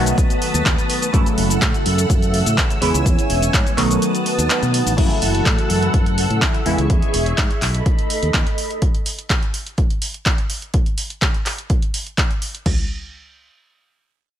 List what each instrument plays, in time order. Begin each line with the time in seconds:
Already playing: fingered electric bass B1, analog polysynth D#3 F#3 A3 B3 F#4, string machine B4 A5 D#6
0.06 closed hi-hat, cabasa
0.18 kick, closed hi-hat, cabasa
0.30 closed hi-hat, cabasa
0.42 open hi-hat
0.54 fingered electric bass D#2, closed hi-hat, cabasa
0.66 fingered electric bass D#2, kick, clap, closed hi-hat, cabasa
0.78 closed hi-hat, cabasa
0.90 open hi-hat
1.02 closed hi-hat, cabasa
1.13 fingered electric bass F#2, analog polysynth C#3 E3 F#3 A3 E4, string machine A4 F#5 E6, kick, closed hi-hat, cabasa
1.26 closed hi-hat, cabasa
1.38 fingered electric bass F#1, open hi-hat
1.50 closed hi-hat, cabasa
1.62 fingered electric bass A2, kick, clap, closed hi-hat, cabasa
1.74 closed hi-hat, cabasa
1.86 fingered electric bass F#2, open hi-hat
1.98 closed hi-hat, cabasa
2.10 fingered electric bass F#2, kick, closed hi-hat, cabasa
2.22 closed hi-hat, cabasa
2.34 open hi-hat
2.46 fingered electric bass A2, closed hi-hat, cabasa
2.58 kick, clap, closed hi-hat, cabasa
2.70 closed hi-hat, cabasa
2.81 fingered electric bass E2, analog polysynth C#3 E3 G#3 B3 E4, string machine C#5 G#5, open hi-hat
2.94 fingered electric bass C#2, closed hi-hat, cabasa
3.06 fingered electric bass E2, kick, closed hi-hat, cabasa
3.19 closed hi-hat, cabasa
3.30 fingered electric bass E1, open hi-hat
3.42 closed hi-hat, cabasa
3.54 fingered electric bass G#2, kick, clap, closed hi-hat, cabasa
3.67 closed hi-hat, cabasa
3.77 fingered electric bass B1, analog polysynth D#3 F#3 A3 B3 F#4, string machine B4 A5 D#6, clap, open hi-hat
3.91 closed hi-hat, cabasa
4.02 closed hi-hat, cabasa
4.15 closed hi-hat, cabasa
4.26 open hi-hat
4.38 fingered electric bass D#2, closed hi-hat, cabasa
4.50 clap, closed hi-hat, cabasa
4.62 fingered electric bass B2, closed hi-hat, cabasa
4.74 open hi-hat
4.86 fingered electric bass A1, open hi-hat, cabasa
4.97 fingered electric bass F#2, analog polysynth C#3 E3 F#3 A3 E4, string machine A4 F#5 E6, kick, closed hi-hat, crash
5.11 closed hi-hat
5.22 fingered electric bass F#1, open hi-hat
5.35 closed hi-hat
5.46 fingered electric bass A2, kick, clap, closed hi-hat
5.58 closed hi-hat
5.70 fingered electric bass F#2, open hi-hat
5.83 closed hi-hat
5.94 fingered electric bass F#2, kick, closed hi-hat
6.06 closed hi-hat
6.18 open hi-hat
6.30 fingered electric bass A2, closed hi-hat
6.42 kick, clap, closed hi-hat
6.54 closed hi-hat
6.65 fingered electric bass E2, analog polysynth C#3 E3 G#3 B3 E4, string machine G#4 E5 C#6, open hi-hat
6.78 fingered electric bass C#2, closed hi-hat
6.90 fingered electric bass E2, kick, closed hi-hat
7.02 closed hi-hat
7.14 fingered electric bass E1, open hi-hat
7.26 closed hi-hat
7.38 fingered electric bass G#2, kick, clap, closed hi-hat
7.51 closed hi-hat
7.61 fingered electric bass B1, string machine A4 D#5 B5, clap, open hi-hat
7.74 closed hi-hat
7.86 kick, closed hi-hat
7.99 closed hi-hat
8.10 open hi-hat
8.23 fingered electric bass D#2, closed hi-hat
8.34 fingered electric bass D#2, kick, clap, closed hi-hat
8.47 closed hi-hat
8.58 open hi-hat
8.71 closed hi-hat
8.82 kick, closed hi-hat
8.95 closed hi-hat
9.06 open hi-hat
9.19 closed hi-hat
9.30 kick, clap, closed hi-hat
9.43 closed hi-hat
9.54 open hi-hat
9.66 closed hi-hat
9.78 kick, closed hi-hat
9.90 closed hi-hat
10.02 open hi-hat
10.14 closed hi-hat
10.26 kick, clap, closed hi-hat
10.38 closed hi-hat
10.50 open hi-hat
10.62 closed hi-hat
10.74 kick, closed hi-hat
10.86 closed hi-hat
10.98 open hi-hat
11.10 closed hi-hat
11.22 kick, clap, closed hi-hat
11.34 closed hi-hat
11.46 clap, open hi-hat
11.58 closed hi-hat
11.70 kick, closed hi-hat
11.82 closed hi-hat
11.94 open hi-hat
12.07 closed hi-hat
12.18 kick, clap, closed hi-hat
12.31 closed hi-hat
12.42 open hi-hat
12.55 closed hi-hat
12.66 kick, floor tom, crash